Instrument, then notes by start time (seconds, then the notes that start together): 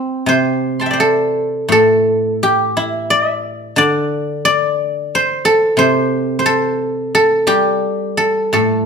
guzheng
Already playing: C4 D4
0.26 C3 C5
0.80 G5 A5 C6
0.86 E5
0.91 C5 D5
1.00 A4
1.69 A2 A4
2.43 G4
2.77 E4
3.10 D5
3.29 E5
3.76 D3 D5
4.45 D5
5.15 C5
5.45 A4
5.77 C3 C5
6.39 C5
6.46 A4
7.15 A4
7.47 G3 G4
8.17 A4
8.53 A2 A4